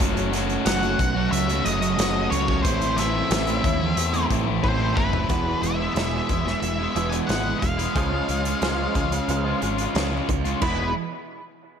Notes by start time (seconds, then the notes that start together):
0.00 F#1 F#3 A3 C#4 F#4, kick, closed hi-hat
0.17 closed hi-hat
0.32 F#3 A3 C#4 F#4, snare, closed hi-hat
0.48 A3 C#4 F#4, closed hi-hat
0.65 F#1 F#3 A3 C#4 F#4 F#5, snare, closed hi-hat
0.82 A3 C#4 F#4, closed hi-hat
0.98 B1 F#3 A3 C#4 F#4, muted overdriven electric guitar stroke, kick, closed hi-hat
1.15 A3 C#4 F#4, muted distorted electric guitar stroke
1.31 C#2 E5, closed hi-hat
1.48 A3 C#4 F#4, closed hi-hat
1.64 F#1 F#3 A3 C#4 F#4 D#5, closed hi-hat
1.81 A3 C#4 F#4, muted distorted electric guitar stroke, closed hi-hat
1.97 F#1 F#3 A3 C#4 F#4, snare, closed hi-hat
2.30 C#2 F#3 A3 C#4 F#4 C#5, closed hi-hat
2.47 A3 C#4 F#4, kick
2.63 A1 A2 E3 A3 C4 E4 C5, kick, closed hi-hat
2.81 closed hi-hat
2.97 A2 E3 A3 C4 E4 E5, snare, closed hi-hat
3.13 A3 C4 E4
3.31 A1 A2 E3 A3 C4 E4, snare, closed hi-hat
3.47 C4 E4, closed hi-hat
3.52 A3
3.63 D#2 E3 A3 C4 E4, muted overdriven electric guitar stroke, kick, closed hi-hat
3.79 C4 E4, muted distorted electric guitar stroke
3.84 A3
3.96 E2, closed hi-hat
4.13 A3 C4 E4, closed hi-hat
4.29 A1 E3 A3 C4 E4, kick, closed hi-hat
4.46 A3 C4 E4, muted distorted electric guitar stroke
4.62 A1 A2 E3 A3 C4 E4 C5, kick
4.95 F#1 E3 A3 C4 E4 B4, kick
5.12 A3 C4 E4, floor tom
5.29 E1 E2 B2 E3 G#3 B3 E4, kick, closed hi-hat
5.46 G#3 B3 E4
5.62 E1 E2 B2 E3 G#3 B3 E4 E5, closed hi-hat
5.80 G#3 B3 E4
5.94 E1 E2 B2 E3 G#3 B3 E4 E5, snare, closed hi-hat
6.29 E1 E2 B2 E3 G#3 B3 E4, muted distorted electric guitar stroke, kick, closed hi-hat
6.45 G#3 B3 E4, muted overdriven electric guitar stroke, snare
6.61 E1 E2 B2 E5, closed hi-hat
6.79 G#3 B3 E4
6.95 E1 E2 B2 E3 G#3 B3 E4, closed hi-hat
7.09 B3 E4 G#5, closed hi-hat
7.15 G#3
7.27 G#1 E2 B2 E3 G#3 B3 F#5, snare, closed hi-hat
7.31 E4
7.46 G#3 B3 E4
7.59 E1 E2 B2 E3 G#3 F5, muted overdriven electric guitar stroke, kick, closed hi-hat
7.64 B3 E4
7.79 G#3 B3 E4, closed hi-hat
7.95 C#2 C#3 F3 G#3 C#4 F4, kick, closed hi-hat
8.12 G#3 C#4 F4
8.28 C#2 C#3 F3 G#3 C#4 F4, closed hi-hat
8.44 G#3 C#4 F4, closed hi-hat
8.62 C#2 C#3 F3 G#3 C#4 F4, snare, closed hi-hat
8.94 C#2 C#3 F3 G#3 C#4 F4, muted distorted electric guitar stroke, kick, closed hi-hat
9.12 G#3 C#4 F4, muted overdriven electric guitar stroke, closed hi-hat
9.28 C#2 C#3 F3 G#3, closed hi-hat
9.45 G#3 C#4 F4
9.61 G#1 C#3 F3 G#3 C#4 F4, closed hi-hat
9.77 G#3 C#4 F4, closed hi-hat
9.94 C#2 C#3 F3 G#3 C#4 F4, snare, closed hi-hat
10.11 G#3 C#4 F4
10.28 C#2 C#3 F3 G#3 C#4 F4, muted overdriven electric guitar stroke, kick, closed hi-hat
10.45 G#3 C#4 F4, closed hi-hat
10.61 E1 E2 B2 E3 G#3 B3 E4 B4, kick, crash